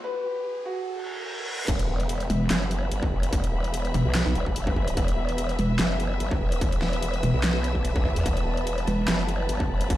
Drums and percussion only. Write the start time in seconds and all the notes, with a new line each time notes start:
1.68 kick, closed hi-hat, crash
1.79 closed hi-hat
2.00 closed hi-hat
2.09 closed hi-hat
2.20 closed hi-hat
2.30 closed hi-hat
2.50 snare, clap, closed hi-hat
2.71 closed hi-hat
2.92 closed hi-hat
3.03 kick
3.23 closed hi-hat
3.33 kick, closed hi-hat
3.44 closed hi-hat
3.64 closed hi-hat
3.74 closed hi-hat
3.85 closed hi-hat
3.94 closed hi-hat
4.15 snare, clap, closed hi-hat
4.35 closed hi-hat
4.46 kick
4.56 closed hi-hat
4.67 kick
4.76 kick
4.88 closed hi-hat
4.97 kick, closed hi-hat
5.08 closed hi-hat
5.29 closed hi-hat
5.38 closed hi-hat
5.49 closed hi-hat
5.59 closed hi-hat
5.79 snare, clap, closed hi-hat
6.00 closed hi-hat
6.20 closed hi-hat
6.31 kick
6.52 closed hi-hat
6.61 kick, closed hi-hat
6.72 closed hi-hat
6.82 snare
6.93 closed hi-hat
7.03 closed hi-hat
7.14 closed hi-hat
7.23 closed hi-hat
7.44 snare, clap, closed hi-hat
7.64 closed hi-hat
7.75 kick
7.85 closed hi-hat
7.96 kick
8.05 kick
8.16 closed hi-hat
8.26 kick, closed hi-hat
8.37 closed hi-hat
8.57 closed hi-hat
8.67 closed hi-hat
8.78 closed hi-hat
8.87 closed hi-hat
9.08 snare, clap, closed hi-hat
9.29 closed hi-hat
9.49 closed hi-hat
9.60 kick
9.81 closed hi-hat
9.90 kick, closed hi-hat